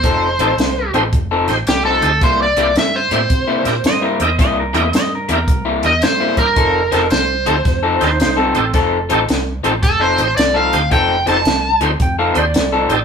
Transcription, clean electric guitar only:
X:1
M:4/4
L:1/16
Q:"Swing" 1/4=110
K:F
V:1 name="Clean electric guitar"
[F,C_EA] z [F,CEA] z3 [F,CEA] z2 [F,CEA] z3 [F,CEA] z2 | [C,G,B,E] z [C,G,B,E] z3 [C,G,B,E] z2 [C,G,B,E] z3 [C,G,B,E] z2 | [C,G,B,E] z [C,G,B,E] z3 [C,G,B,E] z2 [C,G,B,E] z3 [C,G,B,E] z2 | [F,C_EA] z [F,CEA] z3 [F,CEA] z2 [F,CEA] z3 [F,CEA] z2 |
[F,C_EA] z [F,CEA] z3 [F,CEA] z2 [F,CEA] z3 [F,CEA] z2 | [F,C_EA] z [F,CEA] z3 [F,CEA] z2 [F,CEA] z3 [F,CEA] z2 |]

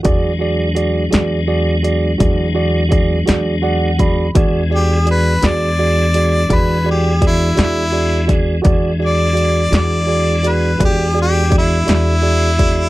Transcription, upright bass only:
X:1
M:12/8
L:1/8
Q:3/8=56
K:Emix
V:1 name="Upright bass" clef=bass
E,,3 E,,3 E,,3 E,,3 | E,,3 E,,3 E,,3 E,,3 | E,,3 E,,3 E,,3 E,,3 |]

